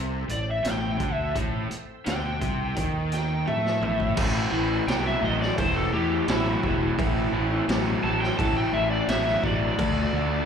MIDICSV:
0, 0, Header, 1, 8, 480
1, 0, Start_track
1, 0, Key_signature, 0, "minor"
1, 0, Tempo, 701754
1, 925, Time_signature, 4, 2, 24, 8
1, 7151, End_track
2, 0, Start_track
2, 0, Title_t, "Electric slide guitar"
2, 0, Program_c, 0, 29
2, 216, Note_on_c, 0, 74, 87
2, 326, Note_off_c, 0, 74, 0
2, 349, Note_on_c, 0, 76, 84
2, 453, Note_off_c, 0, 76, 0
2, 463, Note_on_c, 0, 79, 97
2, 778, Note_off_c, 0, 79, 0
2, 778, Note_on_c, 0, 76, 97
2, 921, Note_off_c, 0, 76, 0
2, 1421, Note_on_c, 0, 79, 76
2, 2115, Note_off_c, 0, 79, 0
2, 2143, Note_on_c, 0, 79, 88
2, 2370, Note_off_c, 0, 79, 0
2, 2377, Note_on_c, 0, 76, 92
2, 2841, Note_off_c, 0, 76, 0
2, 3341, Note_on_c, 0, 79, 97
2, 3453, Note_off_c, 0, 79, 0
2, 3468, Note_on_c, 0, 76, 84
2, 3577, Note_off_c, 0, 76, 0
2, 3592, Note_on_c, 0, 75, 86
2, 3699, Note_off_c, 0, 75, 0
2, 3706, Note_on_c, 0, 74, 88
2, 3815, Note_off_c, 0, 74, 0
2, 3818, Note_on_c, 0, 72, 86
2, 3932, Note_off_c, 0, 72, 0
2, 3943, Note_on_c, 0, 69, 84
2, 4054, Note_off_c, 0, 69, 0
2, 4062, Note_on_c, 0, 67, 81
2, 4290, Note_off_c, 0, 67, 0
2, 4296, Note_on_c, 0, 64, 102
2, 5225, Note_off_c, 0, 64, 0
2, 5496, Note_on_c, 0, 81, 104
2, 5609, Note_off_c, 0, 81, 0
2, 5614, Note_on_c, 0, 79, 91
2, 5728, Note_off_c, 0, 79, 0
2, 5732, Note_on_c, 0, 81, 99
2, 5846, Note_off_c, 0, 81, 0
2, 5859, Note_on_c, 0, 79, 83
2, 5970, Note_off_c, 0, 79, 0
2, 5976, Note_on_c, 0, 76, 91
2, 6088, Note_off_c, 0, 76, 0
2, 6091, Note_on_c, 0, 74, 92
2, 6205, Note_off_c, 0, 74, 0
2, 6219, Note_on_c, 0, 76, 104
2, 6445, Note_off_c, 0, 76, 0
2, 6466, Note_on_c, 0, 74, 96
2, 7151, Note_off_c, 0, 74, 0
2, 7151, End_track
3, 0, Start_track
3, 0, Title_t, "Tonewheel organ"
3, 0, Program_c, 1, 16
3, 0, Note_on_c, 1, 60, 62
3, 0, Note_on_c, 1, 64, 65
3, 0, Note_on_c, 1, 69, 63
3, 0, Note_on_c, 1, 72, 64
3, 896, Note_off_c, 1, 69, 0
3, 897, Note_off_c, 1, 60, 0
3, 899, Note_off_c, 1, 64, 0
3, 900, Note_off_c, 1, 72, 0
3, 913, Note_on_c, 1, 60, 58
3, 914, Note_on_c, 1, 69, 63
3, 914, Note_on_c, 1, 76, 61
3, 922, Note_on_c, 1, 72, 64
3, 2827, Note_off_c, 1, 60, 0
3, 2827, Note_off_c, 1, 69, 0
3, 2827, Note_off_c, 1, 76, 0
3, 2831, Note_off_c, 1, 72, 0
3, 2843, Note_on_c, 1, 60, 69
3, 2845, Note_on_c, 1, 72, 72
3, 2851, Note_on_c, 1, 69, 64
3, 2852, Note_on_c, 1, 64, 71
3, 4747, Note_off_c, 1, 60, 0
3, 4749, Note_off_c, 1, 72, 0
3, 4752, Note_off_c, 1, 64, 0
3, 4752, Note_off_c, 1, 69, 0
3, 4771, Note_on_c, 1, 72, 67
3, 4773, Note_on_c, 1, 60, 69
3, 4773, Note_on_c, 1, 69, 72
3, 4774, Note_on_c, 1, 64, 73
3, 6666, Note_off_c, 1, 72, 0
3, 6667, Note_off_c, 1, 60, 0
3, 6667, Note_off_c, 1, 69, 0
3, 6668, Note_off_c, 1, 64, 0
3, 6693, Note_on_c, 1, 69, 71
3, 6693, Note_on_c, 1, 74, 73
3, 6696, Note_on_c, 1, 65, 68
3, 6698, Note_on_c, 1, 62, 68
3, 7151, Note_off_c, 1, 62, 0
3, 7151, Note_off_c, 1, 65, 0
3, 7151, Note_off_c, 1, 69, 0
3, 7151, Note_off_c, 1, 74, 0
3, 7151, End_track
4, 0, Start_track
4, 0, Title_t, "Overdriven electric guitar"
4, 0, Program_c, 2, 29
4, 0, Note_on_c, 2, 48, 98
4, 190, Note_off_c, 2, 48, 0
4, 196, Note_on_c, 2, 45, 65
4, 392, Note_off_c, 2, 45, 0
4, 438, Note_on_c, 2, 45, 94
4, 670, Note_off_c, 2, 45, 0
4, 673, Note_on_c, 2, 50, 91
4, 912, Note_off_c, 2, 50, 0
4, 922, Note_on_c, 2, 45, 96
4, 1155, Note_off_c, 2, 45, 0
4, 1405, Note_on_c, 2, 50, 100
4, 1640, Note_off_c, 2, 50, 0
4, 1644, Note_on_c, 2, 48, 95
4, 1880, Note_off_c, 2, 48, 0
4, 1884, Note_on_c, 2, 51, 92
4, 2361, Note_off_c, 2, 51, 0
4, 2366, Note_on_c, 2, 57, 97
4, 2602, Note_off_c, 2, 57, 0
4, 2606, Note_on_c, 2, 45, 87
4, 2835, Note_off_c, 2, 45, 0
4, 2844, Note_on_c, 2, 45, 83
4, 2851, Note_on_c, 2, 52, 93
4, 3064, Note_off_c, 2, 45, 0
4, 3068, Note_off_c, 2, 52, 0
4, 3088, Note_on_c, 2, 45, 74
4, 3090, Note_on_c, 2, 52, 76
4, 3306, Note_off_c, 2, 45, 0
4, 3307, Note_off_c, 2, 52, 0
4, 3332, Note_on_c, 2, 45, 88
4, 3336, Note_on_c, 2, 54, 85
4, 3548, Note_off_c, 2, 45, 0
4, 3550, Note_off_c, 2, 54, 0
4, 3571, Note_on_c, 2, 45, 77
4, 3575, Note_on_c, 2, 54, 90
4, 3788, Note_off_c, 2, 45, 0
4, 3790, Note_off_c, 2, 54, 0
4, 3818, Note_on_c, 2, 45, 85
4, 3819, Note_on_c, 2, 52, 97
4, 4031, Note_off_c, 2, 45, 0
4, 4031, Note_off_c, 2, 52, 0
4, 4054, Note_on_c, 2, 45, 78
4, 4058, Note_on_c, 2, 52, 82
4, 4269, Note_off_c, 2, 45, 0
4, 4271, Note_off_c, 2, 52, 0
4, 4294, Note_on_c, 2, 45, 84
4, 4299, Note_on_c, 2, 54, 102
4, 4509, Note_off_c, 2, 45, 0
4, 4511, Note_off_c, 2, 54, 0
4, 4535, Note_on_c, 2, 45, 69
4, 4537, Note_on_c, 2, 54, 79
4, 4749, Note_off_c, 2, 45, 0
4, 4750, Note_off_c, 2, 54, 0
4, 4773, Note_on_c, 2, 45, 82
4, 4776, Note_on_c, 2, 52, 88
4, 4987, Note_off_c, 2, 45, 0
4, 4989, Note_off_c, 2, 52, 0
4, 5011, Note_on_c, 2, 45, 67
4, 5016, Note_on_c, 2, 52, 83
4, 5226, Note_off_c, 2, 45, 0
4, 5228, Note_off_c, 2, 52, 0
4, 5254, Note_on_c, 2, 45, 88
4, 5256, Note_on_c, 2, 54, 96
4, 5467, Note_off_c, 2, 45, 0
4, 5468, Note_off_c, 2, 54, 0
4, 5490, Note_on_c, 2, 45, 72
4, 5495, Note_on_c, 2, 54, 89
4, 5705, Note_off_c, 2, 45, 0
4, 5707, Note_off_c, 2, 54, 0
4, 5730, Note_on_c, 2, 45, 84
4, 5732, Note_on_c, 2, 52, 89
4, 5944, Note_off_c, 2, 45, 0
4, 5945, Note_off_c, 2, 52, 0
4, 5968, Note_on_c, 2, 45, 76
4, 5971, Note_on_c, 2, 52, 93
4, 6183, Note_off_c, 2, 45, 0
4, 6185, Note_off_c, 2, 52, 0
4, 6208, Note_on_c, 2, 45, 77
4, 6212, Note_on_c, 2, 54, 98
4, 6423, Note_off_c, 2, 45, 0
4, 6425, Note_off_c, 2, 54, 0
4, 6453, Note_on_c, 2, 45, 76
4, 6453, Note_on_c, 2, 54, 79
4, 6665, Note_off_c, 2, 45, 0
4, 6665, Note_off_c, 2, 54, 0
4, 6690, Note_on_c, 2, 50, 75
4, 6692, Note_on_c, 2, 57, 93
4, 6903, Note_off_c, 2, 50, 0
4, 6903, Note_off_c, 2, 57, 0
4, 6932, Note_on_c, 2, 50, 84
4, 6935, Note_on_c, 2, 57, 82
4, 7143, Note_off_c, 2, 50, 0
4, 7145, Note_off_c, 2, 57, 0
4, 7151, End_track
5, 0, Start_track
5, 0, Title_t, "Fingered electric bass"
5, 0, Program_c, 3, 33
5, 0, Note_on_c, 3, 36, 85
5, 174, Note_off_c, 3, 36, 0
5, 194, Note_on_c, 3, 33, 70
5, 422, Note_off_c, 3, 33, 0
5, 441, Note_on_c, 3, 33, 89
5, 666, Note_off_c, 3, 33, 0
5, 687, Note_on_c, 3, 38, 77
5, 910, Note_off_c, 3, 38, 0
5, 928, Note_on_c, 3, 33, 90
5, 1151, Note_off_c, 3, 33, 0
5, 1414, Note_on_c, 3, 38, 85
5, 1635, Note_off_c, 3, 38, 0
5, 1653, Note_on_c, 3, 36, 83
5, 1875, Note_off_c, 3, 36, 0
5, 1895, Note_on_c, 3, 39, 90
5, 2346, Note_off_c, 3, 39, 0
5, 2383, Note_on_c, 3, 45, 87
5, 2601, Note_off_c, 3, 45, 0
5, 2612, Note_on_c, 3, 33, 80
5, 2835, Note_off_c, 3, 33, 0
5, 2857, Note_on_c, 3, 33, 95
5, 3039, Note_off_c, 3, 33, 0
5, 3091, Note_on_c, 3, 33, 92
5, 3276, Note_off_c, 3, 33, 0
5, 3330, Note_on_c, 3, 36, 83
5, 3515, Note_off_c, 3, 36, 0
5, 3574, Note_on_c, 3, 33, 88
5, 3757, Note_off_c, 3, 33, 0
5, 3820, Note_on_c, 3, 28, 96
5, 4001, Note_off_c, 3, 28, 0
5, 4054, Note_on_c, 3, 40, 85
5, 4237, Note_off_c, 3, 40, 0
5, 4295, Note_on_c, 3, 33, 94
5, 4477, Note_off_c, 3, 33, 0
5, 4540, Note_on_c, 3, 28, 77
5, 4720, Note_off_c, 3, 28, 0
5, 4781, Note_on_c, 3, 33, 94
5, 4961, Note_off_c, 3, 33, 0
5, 5012, Note_on_c, 3, 33, 92
5, 5195, Note_off_c, 3, 33, 0
5, 5254, Note_on_c, 3, 33, 87
5, 5436, Note_off_c, 3, 33, 0
5, 5497, Note_on_c, 3, 33, 83
5, 5677, Note_off_c, 3, 33, 0
5, 5737, Note_on_c, 3, 33, 96
5, 5917, Note_off_c, 3, 33, 0
5, 5970, Note_on_c, 3, 33, 85
5, 6152, Note_off_c, 3, 33, 0
5, 6211, Note_on_c, 3, 33, 90
5, 6393, Note_off_c, 3, 33, 0
5, 6452, Note_on_c, 3, 33, 86
5, 6633, Note_off_c, 3, 33, 0
5, 6695, Note_on_c, 3, 38, 101
5, 6874, Note_off_c, 3, 38, 0
5, 6929, Note_on_c, 3, 38, 94
5, 7110, Note_off_c, 3, 38, 0
5, 7151, End_track
6, 0, Start_track
6, 0, Title_t, "Muted fingered electric bass strokes"
6, 1174, Note_on_c, 9, 29, 39
6, 1242, Note_off_c, 9, 29, 0
6, 7151, End_track
7, 0, Start_track
7, 0, Title_t, "Muted overdriven electric guitar strokes"
7, 1163, Note_on_c, 9, 29, 53
7, 1231, Note_off_c, 9, 29, 0
7, 7151, End_track
8, 0, Start_track
8, 0, Title_t, "Drums"
8, 201, Note_on_c, 9, 42, 55
8, 269, Note_off_c, 9, 42, 0
8, 442, Note_on_c, 9, 42, 76
8, 450, Note_on_c, 9, 38, 102
8, 510, Note_off_c, 9, 42, 0
8, 518, Note_off_c, 9, 38, 0
8, 683, Note_on_c, 9, 42, 53
8, 685, Note_on_c, 9, 36, 96
8, 751, Note_off_c, 9, 42, 0
8, 753, Note_off_c, 9, 36, 0
8, 927, Note_on_c, 9, 36, 103
8, 928, Note_on_c, 9, 42, 82
8, 996, Note_off_c, 9, 36, 0
8, 996, Note_off_c, 9, 42, 0
8, 1169, Note_on_c, 9, 42, 58
8, 1237, Note_off_c, 9, 42, 0
8, 1410, Note_on_c, 9, 42, 72
8, 1418, Note_on_c, 9, 38, 92
8, 1478, Note_off_c, 9, 42, 0
8, 1487, Note_off_c, 9, 38, 0
8, 1652, Note_on_c, 9, 36, 92
8, 1652, Note_on_c, 9, 42, 59
8, 1720, Note_off_c, 9, 36, 0
8, 1720, Note_off_c, 9, 42, 0
8, 1891, Note_on_c, 9, 42, 81
8, 1893, Note_on_c, 9, 36, 94
8, 1959, Note_off_c, 9, 42, 0
8, 1962, Note_off_c, 9, 36, 0
8, 2133, Note_on_c, 9, 42, 58
8, 2141, Note_on_c, 9, 38, 29
8, 2201, Note_off_c, 9, 42, 0
8, 2209, Note_off_c, 9, 38, 0
8, 2376, Note_on_c, 9, 48, 59
8, 2444, Note_off_c, 9, 48, 0
8, 2503, Note_on_c, 9, 38, 56
8, 2571, Note_off_c, 9, 38, 0
8, 2616, Note_on_c, 9, 45, 76
8, 2685, Note_off_c, 9, 45, 0
8, 2736, Note_on_c, 9, 36, 72
8, 2804, Note_off_c, 9, 36, 0
8, 2852, Note_on_c, 9, 49, 126
8, 2852, Note_on_c, 9, 57, 61
8, 2856, Note_on_c, 9, 36, 112
8, 2921, Note_off_c, 9, 49, 0
8, 2921, Note_off_c, 9, 57, 0
8, 2924, Note_off_c, 9, 36, 0
8, 3340, Note_on_c, 9, 57, 54
8, 3348, Note_on_c, 9, 38, 100
8, 3408, Note_off_c, 9, 57, 0
8, 3416, Note_off_c, 9, 38, 0
8, 3708, Note_on_c, 9, 38, 33
8, 3777, Note_off_c, 9, 38, 0
8, 3818, Note_on_c, 9, 36, 110
8, 3818, Note_on_c, 9, 57, 57
8, 3886, Note_off_c, 9, 36, 0
8, 3886, Note_off_c, 9, 57, 0
8, 4296, Note_on_c, 9, 57, 63
8, 4305, Note_on_c, 9, 38, 120
8, 4365, Note_off_c, 9, 57, 0
8, 4373, Note_off_c, 9, 38, 0
8, 4538, Note_on_c, 9, 36, 81
8, 4606, Note_off_c, 9, 36, 0
8, 4779, Note_on_c, 9, 36, 121
8, 4782, Note_on_c, 9, 57, 60
8, 4847, Note_off_c, 9, 36, 0
8, 4850, Note_off_c, 9, 57, 0
8, 5259, Note_on_c, 9, 57, 57
8, 5267, Note_on_c, 9, 38, 106
8, 5328, Note_off_c, 9, 57, 0
8, 5336, Note_off_c, 9, 38, 0
8, 5631, Note_on_c, 9, 38, 31
8, 5699, Note_off_c, 9, 38, 0
8, 5738, Note_on_c, 9, 36, 111
8, 5742, Note_on_c, 9, 57, 63
8, 5806, Note_off_c, 9, 36, 0
8, 5810, Note_off_c, 9, 57, 0
8, 6215, Note_on_c, 9, 57, 67
8, 6223, Note_on_c, 9, 38, 110
8, 6283, Note_off_c, 9, 57, 0
8, 6292, Note_off_c, 9, 38, 0
8, 6345, Note_on_c, 9, 38, 31
8, 6414, Note_off_c, 9, 38, 0
8, 6454, Note_on_c, 9, 36, 86
8, 6522, Note_off_c, 9, 36, 0
8, 6694, Note_on_c, 9, 36, 114
8, 6695, Note_on_c, 9, 57, 67
8, 6763, Note_off_c, 9, 36, 0
8, 6763, Note_off_c, 9, 57, 0
8, 7151, End_track
0, 0, End_of_file